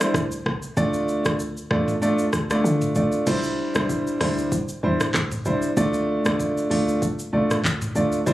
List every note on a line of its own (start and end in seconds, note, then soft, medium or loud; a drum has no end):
0.00 0.19 G3 medium
0.00 0.19 D4 medium
0.00 0.19 E4 medium
0.00 0.19 C5 medium
0.00 cross-stick medium
0.00 shaker medium
0.14 0.37 D2 loud
0.14 kick medium
0.14 cross-stick medium
0.14 shaker medium
0.32 shaker medium
0.46 0.68 C2 loud
0.46 kick medium
0.46 cross-stick medium
0.62 shaker soft
0.77 1.12 D2 loud
0.77 1.35 A3 medium
0.77 1.35 D4 medium
0.77 1.35 F4 medium
0.77 1.35 D5 loud
0.77 kick loud
0.77 shaker medium
0.94 shaker medium
1.09 shaker soft
1.25 1.58 D2 loud
1.25 kick medium
1.25 cross-stick loud
1.25 shaker soft
1.40 shaker medium
1.57 shaker soft
1.70 2.16 E2 loud
1.70 1.92 A3 medium
1.70 1.92 D4 medium
1.70 1.92 F4 medium
1.70 1.92 D5 medium
1.70 kick loud
1.70 cross-stick medium
1.88 mid tom loud
1.88 shaker soft
2.02 2.23 A3 medium
2.02 2.23 D4 medium
2.02 2.23 F4 medium
2.02 2.23 D5 loud
2.02 shaker medium
2.19 shaker medium
2.33 2.56 D2 loud
2.33 cross-stick medium
2.33 shaker medium
2.50 2.92 A3 medium
2.50 2.92 D4 medium
2.50 2.92 F4 medium
2.50 2.92 D5 medium
2.50 cross-stick medium
2.50 shaker medium
2.64 2.87 D3 loud
2.64 shaker medium
2.82 mid tom medium
2.82 shaker medium
2.95 3.08 D2 medium
2.95 3.25 A3 medium
2.95 3.25 D4 medium
2.95 3.25 F4 medium
2.95 3.25 D5 medium
2.95 kick loud
2.95 shaker medium
3.12 shaker soft
3.27 3.62 C2 loud
3.27 3.71 G3 medium
3.27 3.71 D4 medium
3.27 3.71 E4 medium
3.27 3.71 C5 loud
3.27 kick loud
3.27 crash loud
3.27 shaker medium
3.43 shaker medium
3.75 4.08 C2 loud
3.75 4.17 G3 medium
3.75 4.17 D4 medium
3.75 4.17 E4 medium
3.75 4.18 C5 medium
3.75 cross-stick loud
3.75 shaker medium
3.89 kick medium
3.89 shaker medium
4.07 shaker soft
4.21 4.66 D2 loud
4.21 4.50 G3 medium
4.21 4.50 D4 medium
4.21 4.50 E4 medium
4.21 4.50 C5 medium
4.21 cross-stick medium
4.21 open hi-hat medium
4.38 shaker soft
4.52 kick loud
4.52 shaker medium
4.69 shaker medium
4.83 5.06 E2 medium
4.83 5.04 G3 medium
4.83 5.04 D4 medium
4.83 5.04 E4 medium
4.83 5.05 C5 medium
5.00 cross-stick loud
5.00 mid tom medium
5.00 shaker medium
5.14 5.37 D2 loud
5.14 kick medium
5.14 cross-stick medium
5.14 clap medium
5.14 shaker medium
5.32 mid tom medium
5.32 shaker medium
5.45 5.68 C2 loud
5.45 5.67 G3 medium
5.45 5.67 D4 medium
5.45 5.67 E4 medium
5.45 5.67 C5 medium
5.45 shaker medium
5.62 shaker soft
5.77 6.12 D2 loud
5.77 6.21 A3 medium
5.77 6.21 D4 medium
5.77 6.21 F4 medium
5.77 6.21 D5 loud
5.77 kick loud
5.77 shaker medium
5.94 shaker medium
6.25 6.58 D2 medium
6.25 6.67 A3 medium
6.25 6.67 D4 medium
6.25 6.67 F4 medium
6.25 6.67 D5 medium
6.25 cross-stick loud
6.25 shaker soft
6.39 kick medium
6.39 shaker medium
6.57 shaker soft
6.70 7.16 D2 medium
6.70 6.99 A3 medium
6.70 6.99 D4 medium
6.70 6.99 F4 medium
6.70 7.00 D5 medium
6.70 open hi-hat medium
6.88 shaker soft
7.02 kick loud
7.02 shaker medium
7.19 shaker medium
7.33 7.56 C2 loud
7.33 7.54 A3 medium
7.33 7.54 D4 medium
7.33 7.54 F4 medium
7.33 7.54 D5 medium
7.51 cross-stick medium
7.51 mid tom medium
7.51 shaker medium
7.64 7.87 D2 loud
7.64 kick medium
7.64 clap medium
7.64 shaker medium
7.82 mid tom medium
7.82 shaker medium
7.95 8.18 D2 medium
7.95 8.17 A3 medium
7.95 8.17 D4 medium
7.95 8.17 F4 medium
7.95 8.17 D5 medium
7.95 shaker medium
8.12 shaker medium
8.26 8.33 C2 loud
8.26 8.33 G3 loud
8.26 8.33 D4 medium
8.26 8.33 E4 medium
8.26 8.33 C5 loud
8.26 kick loud
8.26 shaker medium